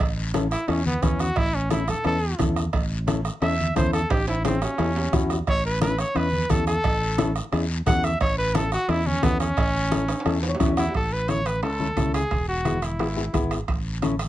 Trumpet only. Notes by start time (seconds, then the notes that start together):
0.51 E4
0.68 C#4
0.86 B3
1.03 C#4
1.20 F#4
1.38 E4
1.55 C#4
1.72 E4
1.89 A4
2.06 A4
3.42 E5
3.76 C5
3.93 A4
4.10 G4
4.28 E4
4.46 C4
4.62 C#4
5.48 C#5
5.65 B4
5.82 B4
5.99 C#5
6.16 B4
6.50 A4
6.67 A4
7.87 F#5
8.04 E5
8.21 C#5
8.38 B4
8.55 A4
8.73 F#4
8.90 E4
9.06 C#4
9.23 B3
9.40 C#4
10.79 E4
10.96 A4
11.13 B4
11.29 C#5
11.46 B4
11.64 A4
12.14 G#4
12.48 F#4
12.83 E4